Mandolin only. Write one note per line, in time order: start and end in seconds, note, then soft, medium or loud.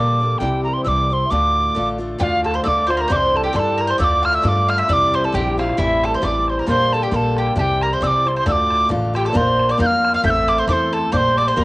2.20 2.46 F4 medium
2.44 2.53 A4 medium
2.54 2.63 C5 medium
2.64 2.86 D5 medium
2.87 2.97 C5 medium
2.97 3.07 A#4 medium
3.08 3.41 C5 medium
3.44 3.54 G4 medium
3.53 3.77 A4 medium
3.78 3.87 A#4 medium
3.87 3.98 C5 medium
3.98 4.22 D5 medium
4.23 4.32 F5 medium
4.33 4.43 E5 medium
4.43 4.69 D5 medium
4.69 4.78 F5 medium
4.78 4.88 E5 medium
4.89 5.12 D5 loud
5.13 5.24 C5 medium
5.24 5.34 A4 medium
5.35 5.57 G4 medium
5.59 5.77 F4 medium
5.78 6.01 E4 medium
6.04 6.13 A4 medium
6.14 6.22 C5 medium
6.23 6.46 D5 medium
6.49 6.58 C5 medium
6.59 6.68 A#4 medium
6.70 6.92 C5 medium
6.94 7.03 A4 medium
7.03 7.12 G4 medium
7.14 7.38 A4 medium
7.38 7.56 G4 medium
7.59 7.83 G4 medium
7.82 7.92 A#4 medium
7.93 8.02 C5 medium
8.03 8.36 D5 medium
8.36 8.46 C5 medium
8.46 9.11 D5 medium
9.16 9.26 G4 medium
9.26 9.34 A4 medium
9.35 9.67 C5 medium
9.69 9.80 D5 medium
9.80 10.13 F5 medium
10.14 10.23 F5 medium
10.24 10.47 E5 medium
10.48 10.57 D5 medium
10.58 10.68 C5 medium
10.69 10.92 C5 medium
10.93 11.12 A4 medium
11.12 11.36 C5 loud
11.38 11.47 D5 medium
11.48 11.57 C5 medium
11.57 11.64 A#4 medium